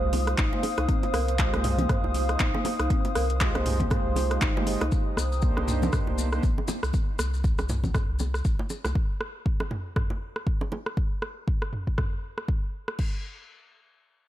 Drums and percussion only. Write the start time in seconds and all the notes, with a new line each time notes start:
0.13 open hi-hat, low bongo, high conga
0.27 cross-stick, closed hi-hat
0.38 kick, clap, closed hi-hat
0.53 high bongo
0.63 open hi-hat, low bongo
0.78 cross-stick, closed hi-hat, high bongo
0.88 kick, closed hi-hat, high conga
1.03 closed hi-hat, high bongo
1.14 cross-stick, open hi-hat, high conga
1.28 closed hi-hat
1.39 kick, clap, closed hi-hat
1.54 cross-stick, closed hi-hat, low bongo
1.64 mid tom, open hi-hat, high bongo
1.78 closed hi-hat, high conga, low conga
1.89 kick, cross-stick, closed hi-hat, mid tom
2.04 high bongo
2.14 open hi-hat, high conga
2.29 cross-stick, closed hi-hat
2.40 kick, clap, closed hi-hat, high conga
2.54 low bongo
2.65 open hi-hat, high bongo, low bongo, high conga
2.80 cross-stick, closed hi-hat
2.90 kick, closed hi-hat, high conga
3.05 closed hi-hat, high bongo
3.15 cross-stick, open hi-hat, high conga
3.30 closed hi-hat
3.41 kick, clap, closed hi-hat
3.55 cross-stick, closed hi-hat, low bongo
3.66 mid tom, open hi-hat, high bongo
3.80 kick, closed hi-hat, high conga, low conga
3.90 kick, cross-stick, closed hi-hat, mid tom, low bongo
4.16 open hi-hat, low bongo, high conga
4.31 cross-stick, closed hi-hat
4.42 kick, clap, closed hi-hat
4.57 high bongo
4.66 open hi-hat, low bongo
4.81 cross-stick, closed hi-hat, high bongo
4.92 kick, high conga, maracas
5.17 cross-stick, high conga, maracas
5.32 maracas
5.42 kick, maracas
5.57 cross-stick, low bongo
5.68 mid tom, high bongo, maracas
5.82 high conga, low conga, maracas
5.93 kick, cross-stick, mid tom, maracas
6.07 high bongo
6.18 high conga, maracas
6.32 cross-stick, maracas
6.43 kick, high conga, maracas
6.58 low bongo
6.68 high bongo, low bongo, high conga, maracas
6.83 cross-stick, maracas
6.93 kick, high conga, maracas
7.19 cross-stick, high conga, maracas
7.34 maracas
7.44 kick, maracas
7.58 cross-stick, low bongo, maracas
7.69 mid tom, high bongo, maracas
7.84 kick, high conga, low conga, maracas
7.94 kick, cross-stick, mid tom, low bongo, maracas
8.19 low bongo, high conga, maracas
8.34 cross-stick, maracas
8.45 kick, maracas
8.59 high bongo
8.70 low bongo, maracas
8.85 cross-stick, high bongo, maracas
8.95 kick
9.21 cross-stick
9.46 kick
9.60 cross-stick, low bongo
9.71 mid tom, high bongo
9.96 kick, cross-stick, mid tom
10.10 high bongo
10.36 cross-stick
10.47 kick
10.61 low bongo
10.72 high bongo, low bongo
10.86 cross-stick
10.97 kick
11.22 cross-stick
11.48 kick
11.62 cross-stick
11.73 mid tom
11.87 kick
11.98 kick, cross-stick, mid tom
12.38 cross-stick
12.48 kick
12.88 cross-stick
12.99 kick, crash